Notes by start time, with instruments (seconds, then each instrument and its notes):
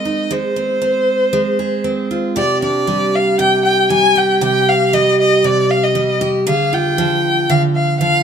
Already playing: steel-string acoustic guitar G#3 C4 A#4, violin D#5
0.05 steel-string acoustic guitar D#4
0.31 steel-string acoustic guitar G#3, violin C5
0.56 steel-string acoustic guitar C4
0.82 steel-string acoustic guitar C4
1.33 steel-string acoustic guitar G#3
1.59 steel-string acoustic guitar G#4
1.84 steel-string acoustic guitar C4
2.11 steel-string acoustic guitar F4
2.36 steel-string acoustic guitar C3 G4, violin D5
2.62 steel-string acoustic guitar D4, violin D5
2.87 steel-string acoustic guitar G3
3.15 violin F5
3.39 steel-string acoustic guitar C3, violin G5
3.65 violin G5
3.90 steel-string acoustic guitar G3, violin G#5
4.16 steel-string acoustic guitar G4, violin G5
4.41 steel-string acoustic guitar C3 G4, violin G5
4.69 violin F5
4.93 steel-string acoustic guitar G3, violin D#5
5.20 violin D#5
5.44 steel-string acoustic guitar C3, violin D5
5.70 violin F5
5.83 violin D#5
5.95 steel-string acoustic guitar G3
6.21 steel-string acoustic guitar G4
6.47 steel-string acoustic guitar D3 G#4, violin F5
6.73 steel-string acoustic guitar F4, violin G5
6.98 steel-string acoustic guitar F3
7.49 steel-string acoustic guitar D3, violin F5
7.75 violin F5
8.00 steel-string acoustic guitar F3, violin F5